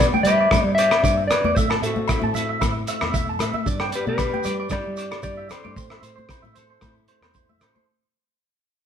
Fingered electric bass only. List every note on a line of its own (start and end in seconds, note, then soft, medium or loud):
0.00 0.11 B2 medium
0.23 0.49 G3 medium
0.51 0.63 G2 loud
0.64 0.89 G3 medium
1.03 1.28 G2 loud
1.44 1.56 E2 medium
1.56 1.81 A2 medium
1.82 2.07 A2 medium
2.23 2.59 A2 medium
2.61 2.86 A2 medium
3.02 3.40 E2 medium
3.40 3.53 A2 medium
3.66 3.91 G2 loud
4.07 4.31 B2 medium
4.46 4.70 G3 medium
4.71 4.85 G2 medium
4.87 5.11 G3 medium
5.24 5.49 G2 loud
5.66 5.76 G2 medium
5.76 6.01 A2 medium
6.02 6.28 A2 medium
6.43 6.80 A2 medium
6.82 7.07 A2 medium
7.21 7.61 E2 medium
7.61 7.74 A2 medium